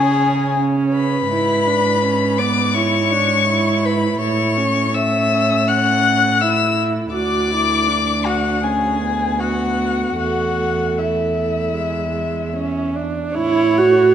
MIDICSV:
0, 0, Header, 1, 5, 480
1, 0, Start_track
1, 0, Key_signature, 3, "major"
1, 0, Tempo, 713436
1, 887, Time_signature, 4, 2, 24, 8
1, 1847, Tempo, 733496
1, 5207, Tempo, 760456
1, 6167, Tempo, 790514
1, 8087, Tempo, 813008
1, 9021, End_track
2, 0, Start_track
2, 0, Title_t, "Violin"
2, 0, Program_c, 0, 40
2, 0, Note_on_c, 0, 80, 78
2, 396, Note_off_c, 0, 80, 0
2, 640, Note_on_c, 0, 83, 85
2, 1603, Note_on_c, 0, 86, 82
2, 1613, Note_off_c, 0, 83, 0
2, 1844, Note_on_c, 0, 85, 84
2, 1854, Note_off_c, 0, 86, 0
2, 2568, Note_on_c, 0, 83, 79
2, 2578, Note_off_c, 0, 85, 0
2, 2793, Note_off_c, 0, 83, 0
2, 2797, Note_on_c, 0, 85, 81
2, 3284, Note_on_c, 0, 88, 77
2, 3293, Note_off_c, 0, 85, 0
2, 3765, Note_on_c, 0, 90, 78
2, 3775, Note_off_c, 0, 88, 0
2, 4244, Note_on_c, 0, 88, 79
2, 4254, Note_off_c, 0, 90, 0
2, 4482, Note_off_c, 0, 88, 0
2, 4720, Note_on_c, 0, 86, 74
2, 5444, Note_on_c, 0, 78, 72
2, 5453, Note_off_c, 0, 86, 0
2, 5681, Note_on_c, 0, 80, 63
2, 5690, Note_off_c, 0, 78, 0
2, 6163, Note_on_c, 0, 78, 69
2, 6172, Note_off_c, 0, 80, 0
2, 6640, Note_off_c, 0, 78, 0
2, 6644, Note_on_c, 0, 78, 61
2, 7130, Note_on_c, 0, 76, 49
2, 7139, Note_off_c, 0, 78, 0
2, 8318, Note_off_c, 0, 76, 0
2, 8558, Note_on_c, 0, 73, 58
2, 9021, Note_off_c, 0, 73, 0
2, 9021, End_track
3, 0, Start_track
3, 0, Title_t, "Violin"
3, 0, Program_c, 1, 40
3, 0, Note_on_c, 1, 68, 75
3, 405, Note_off_c, 1, 68, 0
3, 651, Note_on_c, 1, 71, 73
3, 1610, Note_on_c, 1, 74, 61
3, 1620, Note_off_c, 1, 71, 0
3, 1848, Note_on_c, 1, 73, 74
3, 1858, Note_off_c, 1, 74, 0
3, 2571, Note_on_c, 1, 71, 62
3, 2581, Note_off_c, 1, 73, 0
3, 2806, Note_off_c, 1, 71, 0
3, 2814, Note_on_c, 1, 73, 65
3, 3288, Note_on_c, 1, 76, 72
3, 3298, Note_off_c, 1, 73, 0
3, 3769, Note_on_c, 1, 78, 70
3, 3779, Note_off_c, 1, 76, 0
3, 4247, Note_on_c, 1, 76, 59
3, 4256, Note_off_c, 1, 78, 0
3, 4484, Note_off_c, 1, 76, 0
3, 4721, Note_on_c, 1, 74, 73
3, 5448, Note_on_c, 1, 66, 54
3, 5458, Note_off_c, 1, 74, 0
3, 5684, Note_off_c, 1, 66, 0
3, 5694, Note_on_c, 1, 68, 61
3, 6168, Note_on_c, 1, 66, 52
3, 6177, Note_off_c, 1, 68, 0
3, 6643, Note_off_c, 1, 66, 0
3, 6647, Note_on_c, 1, 66, 51
3, 7133, Note_on_c, 1, 64, 39
3, 7142, Note_off_c, 1, 66, 0
3, 8319, Note_off_c, 1, 64, 0
3, 8555, Note_on_c, 1, 73, 69
3, 9021, Note_off_c, 1, 73, 0
3, 9021, End_track
4, 0, Start_track
4, 0, Title_t, "Viola"
4, 0, Program_c, 2, 41
4, 0, Note_on_c, 2, 61, 65
4, 400, Note_off_c, 2, 61, 0
4, 404, Note_on_c, 2, 61, 69
4, 876, Note_off_c, 2, 61, 0
4, 884, Note_on_c, 2, 64, 58
4, 1123, Note_on_c, 2, 62, 57
4, 1133, Note_off_c, 2, 64, 0
4, 1366, Note_on_c, 2, 61, 60
4, 1376, Note_off_c, 2, 62, 0
4, 1604, Note_on_c, 2, 59, 70
4, 1614, Note_off_c, 2, 61, 0
4, 1848, Note_on_c, 2, 64, 60
4, 1858, Note_off_c, 2, 59, 0
4, 2089, Note_on_c, 2, 62, 63
4, 2098, Note_off_c, 2, 64, 0
4, 2327, Note_off_c, 2, 62, 0
4, 2331, Note_on_c, 2, 64, 67
4, 2796, Note_off_c, 2, 64, 0
4, 2810, Note_on_c, 2, 64, 54
4, 3044, Note_on_c, 2, 61, 60
4, 3054, Note_off_c, 2, 64, 0
4, 3284, Note_off_c, 2, 61, 0
4, 3290, Note_on_c, 2, 61, 63
4, 4247, Note_on_c, 2, 64, 56
4, 4256, Note_off_c, 2, 61, 0
4, 4717, Note_off_c, 2, 64, 0
4, 4721, Note_on_c, 2, 66, 48
4, 4959, Note_on_c, 2, 64, 59
4, 4968, Note_off_c, 2, 66, 0
4, 5203, Note_on_c, 2, 62, 49
4, 5212, Note_off_c, 2, 64, 0
4, 5682, Note_on_c, 2, 61, 46
4, 5692, Note_off_c, 2, 62, 0
4, 5921, Note_on_c, 2, 59, 46
4, 5930, Note_off_c, 2, 61, 0
4, 6641, Note_off_c, 2, 59, 0
4, 6645, Note_on_c, 2, 57, 47
4, 7588, Note_off_c, 2, 57, 0
4, 7601, Note_on_c, 2, 56, 44
4, 8073, Note_off_c, 2, 56, 0
4, 8087, Note_on_c, 2, 61, 60
4, 8317, Note_on_c, 2, 62, 60
4, 8326, Note_off_c, 2, 61, 0
4, 8553, Note_on_c, 2, 64, 83
4, 8562, Note_off_c, 2, 62, 0
4, 8803, Note_on_c, 2, 66, 81
4, 8811, Note_off_c, 2, 64, 0
4, 9021, Note_off_c, 2, 66, 0
4, 9021, End_track
5, 0, Start_track
5, 0, Title_t, "Cello"
5, 0, Program_c, 3, 42
5, 0, Note_on_c, 3, 49, 55
5, 861, Note_off_c, 3, 49, 0
5, 887, Note_on_c, 3, 44, 54
5, 2778, Note_off_c, 3, 44, 0
5, 2804, Note_on_c, 3, 45, 55
5, 4694, Note_off_c, 3, 45, 0
5, 4721, Note_on_c, 3, 38, 54
5, 6620, Note_off_c, 3, 38, 0
5, 6642, Note_on_c, 3, 40, 42
5, 8414, Note_off_c, 3, 40, 0
5, 8559, Note_on_c, 3, 45, 59
5, 9021, Note_off_c, 3, 45, 0
5, 9021, End_track
0, 0, End_of_file